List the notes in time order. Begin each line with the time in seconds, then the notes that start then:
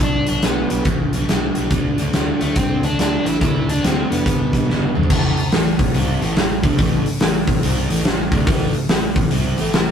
0.00 B1 G2 D3 G3 D4, kick
0.27 B1 G2 D3 G3 D4, closed hi-hat
0.42 B1 G2 D3 G3 B3, snare, closed hi-hat
0.70 B1 G2 D3 G3, closed hi-hat
0.85 A1 G2 D3 G3, kick, closed hi-hat
1.13 B1 G2 D3 G3, closed hi-hat
1.29 B1 G2 D3 G3, snare, closed hi-hat
1.55 B1 G2 D3 G3, closed hi-hat
1.71 D2 D3 A3 D4, kick, closed hi-hat
1.98 D2 D3 A3 D4, closed hi-hat
2.13 D2 D3 A3 D4, snare, closed hi-hat
2.41 D2 D3 A3 D4, closed hi-hat
2.55 G2 D3 A3 C4 D4, kick, closed hi-hat
2.83 D2 D3 A3 D4, closed hi-hat
2.98 D2 D3 A3 D4, snare, closed hi-hat
3.26 A1 D3 A3 D4 E4, closed hi-hat
3.41 D2 D3 A3 D4 E4, kick, closed hi-hat
3.68 D2 D3 A3 D4, closed hi-hat
3.83 D2 D3 A3 C4 D4, snare, closed hi-hat
4.10 F1 D3 A3 B3 D4, closed hi-hat
4.26 G1 G2 D3 G3, kick, closed hi-hat
4.53 G1 G2 D3 G3, kick, closed hi-hat
4.69 G1 G2 D3 G3, snare
4.83 high tom
4.95 B1 G2 D3 G3, mid tom
5.03 floor tom
5.10 A1 A2 E3 A3, kick, crash
5.37 muted overdriven electric guitar stroke, muted fingered electric bass stroke, open hi-hat
5.52 A1 A2 E3, snare, open hi-hat
5.79 A1 A2 E3, kick, open hi-hat
5.94 C2 C3 G3 C4, open hi-hat
6.21 A1 A2 E3 A3, open hi-hat
6.36 A1 A2 E3, snare, open hi-hat
6.63 D2 D3 A3 D4, kick, open hi-hat
6.77 A1 A2 E3 A3, kick, open hi-hat
7.05 muted overdriven electric guitar stroke, muted fingered electric bass stroke, open hi-hat
7.20 A1 A2 E3, snare, open hi-hat
7.47 A1 A2 E3, kick, open hi-hat
7.63 C2 C3 G3 C4, open hi-hat
7.90 A1 A2 E3 A3, open hi-hat
8.05 A1 A2 E3, snare, open hi-hat
8.32 D2 D3 A3 D4, kick, open hi-hat
8.47 A1 A2 E3 A3, kick, open hi-hat
8.73 muted fingered electric bass stroke, muted overdriven electric guitar stroke, open hi-hat
8.89 A1 A2 E3, snare, open hi-hat
9.16 A1 A2 E3, kick, open hi-hat
9.31 C2 C3 G3 C4, open hi-hat
9.58 A1 A2 E3 A3, open hi-hat
9.73 A1 A2 E3, snare, open hi-hat